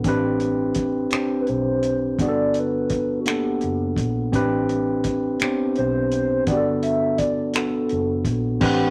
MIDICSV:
0, 0, Header, 1, 7, 480
1, 0, Start_track
1, 0, Tempo, 714286
1, 28, Time_signature, 6, 3, 24, 8
1, 5982, End_track
2, 0, Start_track
2, 0, Title_t, "Soft synth lead"
2, 0, Program_c, 0, 80
2, 948, Note_on_c, 0, 71, 70
2, 999, Note_on_c, 0, 72, 97
2, 1009, Note_off_c, 0, 71, 0
2, 1473, Note_off_c, 0, 72, 0
2, 1487, Note_on_c, 0, 74, 96
2, 1743, Note_on_c, 0, 71, 94
2, 1753, Note_off_c, 0, 74, 0
2, 2150, Note_off_c, 0, 71, 0
2, 2154, Note_on_c, 0, 66, 53
2, 2212, Note_on_c, 0, 67, 75
2, 2222, Note_off_c, 0, 66, 0
2, 2740, Note_off_c, 0, 67, 0
2, 3880, Note_on_c, 0, 72, 83
2, 4327, Note_off_c, 0, 72, 0
2, 4351, Note_on_c, 0, 74, 99
2, 4572, Note_off_c, 0, 74, 0
2, 4589, Note_on_c, 0, 76, 87
2, 4826, Note_on_c, 0, 74, 87
2, 4836, Note_off_c, 0, 76, 0
2, 5067, Note_off_c, 0, 74, 0
2, 5073, Note_on_c, 0, 69, 78
2, 5583, Note_off_c, 0, 69, 0
2, 5806, Note_on_c, 0, 78, 107
2, 5982, Note_off_c, 0, 78, 0
2, 5982, End_track
3, 0, Start_track
3, 0, Title_t, "Tine electric piano"
3, 0, Program_c, 1, 4
3, 0, Control_c, 1, 64, 127
3, 37, Control_c, 1, 64, 0
3, 38, Note_on_c, 1, 60, 83
3, 44, Note_on_c, 1, 62, 82
3, 52, Note_on_c, 1, 67, 78
3, 57, Note_on_c, 1, 71, 92
3, 158, Control_c, 1, 64, 127
3, 584, Note_off_c, 1, 60, 0
3, 587, Note_off_c, 1, 62, 0
3, 591, Note_off_c, 1, 67, 0
3, 593, Note_off_c, 1, 71, 0
3, 752, Note_on_c, 1, 60, 64
3, 757, Note_on_c, 1, 62, 56
3, 760, Note_on_c, 1, 67, 55
3, 770, Note_on_c, 1, 72, 68
3, 1301, Note_off_c, 1, 60, 0
3, 1303, Note_off_c, 1, 62, 0
3, 1305, Note_off_c, 1, 67, 0
3, 1310, Note_off_c, 1, 72, 0
3, 1476, Control_c, 1, 64, 0
3, 1476, Note_on_c, 1, 59, 72
3, 1480, Note_on_c, 1, 62, 64
3, 1489, Note_on_c, 1, 66, 62
3, 1495, Note_on_c, 1, 68, 60
3, 1525, Note_off_c, 1, 68, 0
3, 1535, Note_on_c, 1, 69, 84
3, 1591, Control_c, 1, 64, 127
3, 2023, Note_off_c, 1, 59, 0
3, 2025, Note_off_c, 1, 62, 0
3, 2029, Note_off_c, 1, 66, 0
3, 2052, Note_off_c, 1, 69, 0
3, 2186, Note_on_c, 1, 58, 45
3, 2192, Note_on_c, 1, 62, 51
3, 2197, Note_on_c, 1, 78, 49
3, 2202, Note_on_c, 1, 69, 56
3, 2231, Note_off_c, 1, 58, 0
3, 2232, Note_on_c, 1, 59, 52
3, 2741, Note_off_c, 1, 62, 0
3, 2743, Note_off_c, 1, 78, 0
3, 2746, Note_off_c, 1, 69, 0
3, 2761, Note_off_c, 1, 59, 0
3, 2905, Note_on_c, 1, 60, 81
3, 2913, Note_on_c, 1, 62, 75
3, 2917, Control_c, 1, 64, 0
3, 2922, Note_on_c, 1, 67, 77
3, 2926, Note_on_c, 1, 71, 96
3, 3033, Control_c, 1, 64, 127
3, 3457, Note_off_c, 1, 60, 0
3, 3461, Note_off_c, 1, 62, 0
3, 3466, Note_off_c, 1, 67, 0
3, 3468, Note_off_c, 1, 71, 0
3, 3632, Note_on_c, 1, 59, 51
3, 3639, Note_on_c, 1, 62, 59
3, 3642, Note_on_c, 1, 67, 62
3, 3653, Note_on_c, 1, 72, 71
3, 3673, Note_off_c, 1, 59, 0
3, 3677, Note_on_c, 1, 60, 66
3, 4184, Note_off_c, 1, 62, 0
3, 4186, Note_off_c, 1, 67, 0
3, 4191, Note_off_c, 1, 72, 0
3, 4203, Note_off_c, 1, 60, 0
3, 4351, Note_on_c, 1, 59, 74
3, 4356, Control_c, 1, 64, 0
3, 4356, Note_on_c, 1, 62, 64
3, 4365, Note_on_c, 1, 66, 68
3, 4374, Note_on_c, 1, 67, 66
3, 4404, Note_off_c, 1, 67, 0
3, 4415, Note_on_c, 1, 69, 81
3, 4463, Control_c, 1, 64, 127
3, 4900, Note_off_c, 1, 59, 0
3, 4903, Note_off_c, 1, 62, 0
3, 4907, Note_off_c, 1, 66, 0
3, 4932, Note_off_c, 1, 69, 0
3, 5073, Note_on_c, 1, 59, 56
3, 5078, Note_on_c, 1, 62, 49
3, 5081, Note_on_c, 1, 66, 47
3, 5086, Note_on_c, 1, 69, 59
3, 5621, Note_off_c, 1, 59, 0
3, 5624, Note_off_c, 1, 62, 0
3, 5625, Note_off_c, 1, 66, 0
3, 5628, Note_off_c, 1, 69, 0
3, 5783, Note_on_c, 1, 60, 85
3, 5789, Note_on_c, 1, 62, 78
3, 5797, Control_c, 1, 64, 0
3, 5797, Note_on_c, 1, 67, 78
3, 5800, Note_on_c, 1, 71, 93
3, 5929, Control_c, 1, 64, 127
3, 5982, Note_off_c, 1, 60, 0
3, 5982, Note_off_c, 1, 62, 0
3, 5982, Note_off_c, 1, 67, 0
3, 5982, Note_off_c, 1, 71, 0
3, 5982, End_track
4, 0, Start_track
4, 0, Title_t, "Analog synth pad"
4, 0, Program_c, 2, 89
4, 5785, Note_on_c, 2, 60, 74
4, 5786, Note_on_c, 2, 57, 81
4, 5792, Note_on_c, 2, 67, 93
4, 5982, Note_off_c, 2, 57, 0
4, 5982, Note_off_c, 2, 60, 0
4, 5982, Note_off_c, 2, 67, 0
4, 5982, End_track
5, 0, Start_track
5, 0, Title_t, "Fingered electric bass"
5, 0, Program_c, 3, 33
5, 38, Note_on_c, 3, 33, 82
5, 726, Note_off_c, 3, 33, 0
5, 1002, Note_on_c, 3, 35, 76
5, 1448, Note_off_c, 3, 35, 0
5, 1477, Note_on_c, 3, 31, 83
5, 2405, Note_off_c, 3, 31, 0
5, 2444, Note_on_c, 3, 30, 79
5, 2652, Note_off_c, 3, 30, 0
5, 2673, Note_on_c, 3, 34, 76
5, 2887, Note_off_c, 3, 34, 0
5, 2917, Note_on_c, 3, 33, 78
5, 3605, Note_off_c, 3, 33, 0
5, 3889, Note_on_c, 3, 35, 81
5, 4331, Note_off_c, 3, 35, 0
5, 4356, Note_on_c, 3, 31, 87
5, 5285, Note_off_c, 3, 31, 0
5, 5325, Note_on_c, 3, 30, 80
5, 5533, Note_off_c, 3, 30, 0
5, 5549, Note_on_c, 3, 34, 78
5, 5764, Note_off_c, 3, 34, 0
5, 5795, Note_on_c, 3, 33, 99
5, 5982, Note_off_c, 3, 33, 0
5, 5982, End_track
6, 0, Start_track
6, 0, Title_t, "Muted fingered electric bass strokes"
6, 763, Note_on_c, 9, 29, 38
6, 830, Note_off_c, 9, 29, 0
6, 3639, Note_on_c, 9, 29, 42
6, 3707, Note_off_c, 9, 29, 0
6, 5982, End_track
7, 0, Start_track
7, 0, Title_t, "Drums"
7, 29, Note_on_c, 9, 42, 66
7, 30, Note_on_c, 9, 36, 106
7, 96, Note_off_c, 9, 42, 0
7, 97, Note_off_c, 9, 36, 0
7, 268, Note_on_c, 9, 42, 50
7, 336, Note_off_c, 9, 42, 0
7, 501, Note_on_c, 9, 42, 65
7, 509, Note_on_c, 9, 36, 79
7, 568, Note_off_c, 9, 42, 0
7, 577, Note_off_c, 9, 36, 0
7, 744, Note_on_c, 9, 42, 67
7, 758, Note_on_c, 9, 26, 98
7, 811, Note_off_c, 9, 42, 0
7, 826, Note_off_c, 9, 26, 0
7, 987, Note_on_c, 9, 42, 41
7, 1054, Note_off_c, 9, 42, 0
7, 1229, Note_on_c, 9, 42, 59
7, 1296, Note_off_c, 9, 42, 0
7, 1469, Note_on_c, 9, 36, 94
7, 1473, Note_on_c, 9, 42, 66
7, 1536, Note_off_c, 9, 36, 0
7, 1540, Note_off_c, 9, 42, 0
7, 1708, Note_on_c, 9, 42, 53
7, 1775, Note_off_c, 9, 42, 0
7, 1947, Note_on_c, 9, 42, 67
7, 1950, Note_on_c, 9, 36, 79
7, 2014, Note_off_c, 9, 42, 0
7, 2018, Note_off_c, 9, 36, 0
7, 2189, Note_on_c, 9, 42, 69
7, 2204, Note_on_c, 9, 26, 89
7, 2256, Note_off_c, 9, 42, 0
7, 2271, Note_off_c, 9, 26, 0
7, 2425, Note_on_c, 9, 42, 39
7, 2493, Note_off_c, 9, 42, 0
7, 2664, Note_on_c, 9, 36, 87
7, 2672, Note_on_c, 9, 42, 60
7, 2731, Note_off_c, 9, 36, 0
7, 2739, Note_off_c, 9, 42, 0
7, 2910, Note_on_c, 9, 36, 99
7, 2913, Note_on_c, 9, 42, 66
7, 2978, Note_off_c, 9, 36, 0
7, 2980, Note_off_c, 9, 42, 0
7, 3154, Note_on_c, 9, 42, 52
7, 3221, Note_off_c, 9, 42, 0
7, 3387, Note_on_c, 9, 42, 68
7, 3391, Note_on_c, 9, 36, 81
7, 3454, Note_off_c, 9, 42, 0
7, 3458, Note_off_c, 9, 36, 0
7, 3627, Note_on_c, 9, 42, 65
7, 3641, Note_on_c, 9, 26, 94
7, 3694, Note_off_c, 9, 42, 0
7, 3709, Note_off_c, 9, 26, 0
7, 3868, Note_on_c, 9, 42, 39
7, 3935, Note_off_c, 9, 42, 0
7, 4110, Note_on_c, 9, 42, 61
7, 4177, Note_off_c, 9, 42, 0
7, 4346, Note_on_c, 9, 42, 66
7, 4349, Note_on_c, 9, 36, 105
7, 4414, Note_off_c, 9, 42, 0
7, 4416, Note_off_c, 9, 36, 0
7, 4588, Note_on_c, 9, 42, 54
7, 4655, Note_off_c, 9, 42, 0
7, 4827, Note_on_c, 9, 42, 70
7, 4831, Note_on_c, 9, 36, 75
7, 4895, Note_off_c, 9, 42, 0
7, 4898, Note_off_c, 9, 36, 0
7, 5065, Note_on_c, 9, 42, 69
7, 5079, Note_on_c, 9, 26, 88
7, 5132, Note_off_c, 9, 42, 0
7, 5147, Note_off_c, 9, 26, 0
7, 5305, Note_on_c, 9, 42, 41
7, 5372, Note_off_c, 9, 42, 0
7, 5542, Note_on_c, 9, 36, 85
7, 5545, Note_on_c, 9, 42, 60
7, 5609, Note_off_c, 9, 36, 0
7, 5612, Note_off_c, 9, 42, 0
7, 5784, Note_on_c, 9, 49, 103
7, 5788, Note_on_c, 9, 36, 120
7, 5852, Note_off_c, 9, 49, 0
7, 5855, Note_off_c, 9, 36, 0
7, 5982, End_track
0, 0, End_of_file